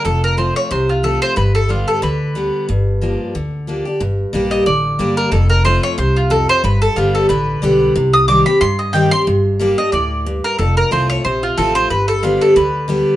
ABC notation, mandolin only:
X:1
M:4/4
L:1/8
Q:"Swing" 1/4=182
K:Fmix
V:1 name="Mandolin"
A B c ^c =c F A c | =B A F A B4 | z8 | z3 e d3 B |
A B c ^c =c F A c | =B A F A B4 | z e' d' =b c' e g c' | z3 e d3 B |
A B c ^c =c F A c | =B A F A B4 |]